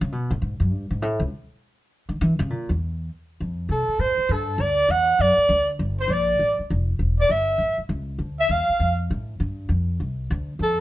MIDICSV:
0, 0, Header, 1, 5, 480
1, 0, Start_track
1, 0, Key_signature, -1, "major"
1, 0, Tempo, 299401
1, 1627, Time_signature, 4, 2, 24, 8
1, 17319, End_track
2, 0, Start_track
2, 0, Title_t, "Soprano saxophone"
2, 0, Program_c, 0, 64
2, 5959, Note_on_c, 0, 69, 69
2, 6419, Note_on_c, 0, 72, 81
2, 6443, Note_off_c, 0, 69, 0
2, 6923, Note_on_c, 0, 69, 62
2, 6947, Note_off_c, 0, 72, 0
2, 7388, Note_on_c, 0, 74, 78
2, 7412, Note_off_c, 0, 69, 0
2, 7870, Note_on_c, 0, 78, 85
2, 7894, Note_off_c, 0, 74, 0
2, 8355, Note_on_c, 0, 74, 76
2, 8379, Note_off_c, 0, 78, 0
2, 9131, Note_off_c, 0, 74, 0
2, 9641, Note_on_c, 0, 72, 70
2, 9825, Note_on_c, 0, 74, 69
2, 9849, Note_off_c, 0, 72, 0
2, 10586, Note_off_c, 0, 74, 0
2, 11563, Note_on_c, 0, 74, 73
2, 11726, Note_on_c, 0, 76, 81
2, 11750, Note_off_c, 0, 74, 0
2, 12497, Note_off_c, 0, 76, 0
2, 13476, Note_on_c, 0, 76, 83
2, 13653, Note_on_c, 0, 77, 77
2, 13677, Note_off_c, 0, 76, 0
2, 14422, Note_off_c, 0, 77, 0
2, 17037, Note_on_c, 0, 69, 75
2, 17319, Note_off_c, 0, 69, 0
2, 17319, End_track
3, 0, Start_track
3, 0, Title_t, "Trumpet"
3, 0, Program_c, 1, 56
3, 5955, Note_on_c, 1, 69, 60
3, 6440, Note_on_c, 1, 72, 74
3, 6464, Note_off_c, 1, 69, 0
3, 6952, Note_on_c, 1, 69, 53
3, 6976, Note_off_c, 1, 72, 0
3, 7393, Note_on_c, 1, 74, 61
3, 7417, Note_off_c, 1, 69, 0
3, 7884, Note_on_c, 1, 78, 69
3, 7908, Note_off_c, 1, 74, 0
3, 8357, Note_on_c, 1, 74, 67
3, 8381, Note_off_c, 1, 78, 0
3, 9132, Note_off_c, 1, 74, 0
3, 9617, Note_on_c, 1, 72, 76
3, 9787, Note_on_c, 1, 74, 65
3, 9811, Note_off_c, 1, 72, 0
3, 10567, Note_off_c, 1, 74, 0
3, 11531, Note_on_c, 1, 74, 64
3, 11721, Note_on_c, 1, 76, 62
3, 11745, Note_off_c, 1, 74, 0
3, 12495, Note_off_c, 1, 76, 0
3, 13453, Note_on_c, 1, 76, 74
3, 13638, Note_on_c, 1, 77, 65
3, 13662, Note_off_c, 1, 76, 0
3, 14414, Note_off_c, 1, 77, 0
3, 17020, Note_on_c, 1, 69, 64
3, 17319, Note_off_c, 1, 69, 0
3, 17319, End_track
4, 0, Start_track
4, 0, Title_t, "Upright bass"
4, 0, Program_c, 2, 32
4, 20, Note_on_c, 2, 49, 101
4, 197, Note_off_c, 2, 49, 0
4, 197, Note_on_c, 2, 47, 83
4, 479, Note_off_c, 2, 47, 0
4, 488, Note_on_c, 2, 45, 92
4, 659, Note_off_c, 2, 45, 0
4, 668, Note_on_c, 2, 44, 80
4, 949, Note_off_c, 2, 44, 0
4, 958, Note_on_c, 2, 42, 86
4, 1156, Note_off_c, 2, 42, 0
4, 1156, Note_on_c, 2, 43, 83
4, 1445, Note_off_c, 2, 43, 0
4, 1452, Note_on_c, 2, 44, 86
4, 1636, Note_off_c, 2, 44, 0
4, 1636, Note_on_c, 2, 45, 95
4, 1907, Note_off_c, 2, 45, 0
4, 1917, Note_on_c, 2, 37, 88
4, 2027, Note_off_c, 2, 37, 0
4, 3347, Note_on_c, 2, 51, 84
4, 3528, Note_off_c, 2, 51, 0
4, 3545, Note_on_c, 2, 52, 110
4, 3823, Note_off_c, 2, 52, 0
4, 3833, Note_on_c, 2, 49, 108
4, 4012, Note_off_c, 2, 49, 0
4, 4012, Note_on_c, 2, 46, 73
4, 4309, Note_off_c, 2, 46, 0
4, 4316, Note_on_c, 2, 40, 78
4, 4930, Note_off_c, 2, 40, 0
4, 5458, Note_on_c, 2, 41, 78
4, 5904, Note_off_c, 2, 41, 0
4, 5914, Note_on_c, 2, 48, 75
4, 6207, Note_off_c, 2, 48, 0
4, 6391, Note_on_c, 2, 45, 69
4, 6686, Note_off_c, 2, 45, 0
4, 6877, Note_on_c, 2, 43, 90
4, 7333, Note_off_c, 2, 43, 0
4, 7343, Note_on_c, 2, 38, 84
4, 7820, Note_off_c, 2, 38, 0
4, 7830, Note_on_c, 2, 40, 75
4, 8310, Note_off_c, 2, 40, 0
4, 8318, Note_on_c, 2, 42, 75
4, 8602, Note_off_c, 2, 42, 0
4, 8799, Note_on_c, 2, 38, 91
4, 9276, Note_off_c, 2, 38, 0
4, 9286, Note_on_c, 2, 31, 82
4, 9733, Note_off_c, 2, 31, 0
4, 9743, Note_on_c, 2, 34, 83
4, 10228, Note_off_c, 2, 34, 0
4, 10248, Note_on_c, 2, 33, 72
4, 10536, Note_off_c, 2, 33, 0
4, 10748, Note_on_c, 2, 29, 86
4, 11198, Note_off_c, 2, 29, 0
4, 11208, Note_on_c, 2, 28, 78
4, 11681, Note_off_c, 2, 28, 0
4, 11693, Note_on_c, 2, 31, 73
4, 12144, Note_off_c, 2, 31, 0
4, 12154, Note_on_c, 2, 33, 69
4, 12449, Note_off_c, 2, 33, 0
4, 12650, Note_on_c, 2, 37, 88
4, 13114, Note_off_c, 2, 37, 0
4, 13123, Note_on_c, 2, 38, 76
4, 13600, Note_off_c, 2, 38, 0
4, 13611, Note_on_c, 2, 40, 77
4, 13899, Note_off_c, 2, 40, 0
4, 14101, Note_on_c, 2, 41, 79
4, 14569, Note_off_c, 2, 41, 0
4, 14596, Note_on_c, 2, 45, 82
4, 15057, Note_off_c, 2, 45, 0
4, 15067, Note_on_c, 2, 43, 81
4, 15522, Note_off_c, 2, 43, 0
4, 15531, Note_on_c, 2, 41, 83
4, 16005, Note_off_c, 2, 41, 0
4, 16031, Note_on_c, 2, 36, 76
4, 16495, Note_off_c, 2, 36, 0
4, 16520, Note_on_c, 2, 38, 93
4, 16970, Note_off_c, 2, 38, 0
4, 16980, Note_on_c, 2, 41, 77
4, 17319, Note_off_c, 2, 41, 0
4, 17319, End_track
5, 0, Start_track
5, 0, Title_t, "Muted upright bass strokes"
5, 6219, Note_on_c, 9, 29, 34
5, 6379, Note_off_c, 9, 29, 0
5, 6694, Note_on_c, 9, 29, 36
5, 6855, Note_off_c, 9, 29, 0
5, 8612, Note_on_c, 9, 29, 36
5, 8772, Note_off_c, 9, 29, 0
5, 10567, Note_on_c, 9, 29, 38
5, 10727, Note_off_c, 9, 29, 0
5, 12475, Note_on_c, 9, 29, 36
5, 12636, Note_off_c, 9, 29, 0
5, 13933, Note_on_c, 9, 29, 37
5, 14093, Note_off_c, 9, 29, 0
5, 17319, End_track
0, 0, End_of_file